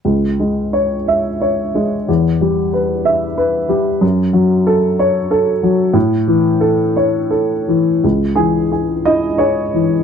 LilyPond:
\new Staff \with { instrumentName = "Upright piano" } { \time 3/4 \key cis \minor \tempo 4 = 90 << { r2. | r2. | r2. | r2. |
r8 gis'4 dis''8 cis''4 | } \\ { cis,8 gis8 cis''8 e''8 cis''8 gis8 | e,8 g8 b'8 e''8 b'8 g8 | fis,8 fis8 a'8 cis''8 a'8 fis8 | a,8 e8 a'8 cis''8 a'8 e8 |
cis,8 e8 gis'8 e'8 gis'8 e8 | } >> }